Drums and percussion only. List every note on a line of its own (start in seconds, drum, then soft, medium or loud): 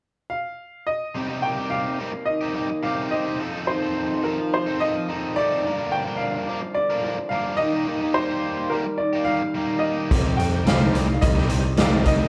10.11 kick loud
10.11 closed hi-hat medium
10.40 closed hi-hat medium
10.67 snare loud
10.67 closed hi-hat medium
10.95 closed hi-hat medium
11.22 kick loud
11.22 closed hi-hat medium
11.37 snare soft
11.49 closed hi-hat medium
11.77 snare loud
11.77 closed hi-hat medium
12.06 kick medium
12.06 closed hi-hat medium